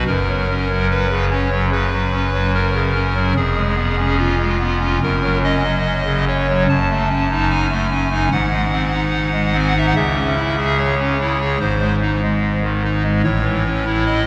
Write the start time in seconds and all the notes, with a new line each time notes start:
0.07 F#1 F#2 A#4
0.29 F#3
0.50 C#4
0.70 F#3
0.90 B4
1.11 C#3
1.31 C#4 C#5
1.51 F#3
1.72 C#3 B4
1.93 F#3
2.12 C#4
2.33 F#3
2.54 A#4
2.75 C#3
2.95 C#4
3.15 F#3
3.37 F1 F2 G#4
3.57 G#3
3.77 B3
3.98 C#4
4.19 F4
4.39 G#3
4.60 B3
4.80 C#4
5.02 F#1 F#2 A#4
5.23 F#3
5.44 C#4 D#5
5.64 F#3
6.06 C#3
6.27 C#4 C#5
6.49 F#3
6.69 F#1 F#2 A5
6.90 A3
7.09 C#4
7.30 D#4
7.50 G#5
7.70 A3
7.90 C#4
8.11 D#4
8.31 G#1 G#2 F#5
8.52 G#3
8.72 C4
8.93 D#4
9.33 G#3
9.54 C4
9.59 G#5
9.68 F#5
9.75 D#4 E5
9.87 F#5
9.96 C#2 C#3 E5
10.15 C#4
10.36 E4
10.57 G#4
10.78 C#5
10.99 C#4
11.20 E4
11.41 G#4
11.60 G#1 G#2 C5
11.81 G#3
12.01 D#4
12.23 G#3
12.63 D#3
12.84 D#4
13.04 G#3
13.23 A1 A2 C#5
13.44 E3
13.65 C#4
13.85 E4
14.06 D#5